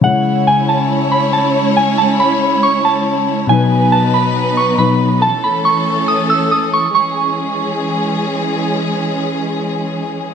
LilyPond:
<<
  \new Staff \with { instrumentName = "Synth bell" } { \time 4/4 \key cis \minor \tempo 4 = 139 fis''4 gis''8 a''4 b''8 a''8 r8 | gis''8 a''8 b''4 cis'''8 a''4. | gis''4 a''8 b''4 cis'''8 b''8 r8 | a''8 b''8 cis'''4 dis'''8 e'''8 dis'''8 cis'''8 |
cis'''2. r4 | r1 | }
  \new Staff \with { instrumentName = "String section" } { \time 4/4 \key cis \minor <gis cis' e' cis''>1~ | <gis cis' e' cis''>1 | <fis b dis' b'>1 | <e a cis' a'>1 |
<e gis cis' gis'>1~ | <e gis cis' gis'>1 | }
  \new Staff \with { instrumentName = "Grand piano" } { \time 4/4 \key cis \minor <cis gis e' cis''>1~ | <cis gis e' cis''>1 | <b, fis dis' b'>2. <b, fis dis' b'>4 | r1 |
r1 | r1 | }
>>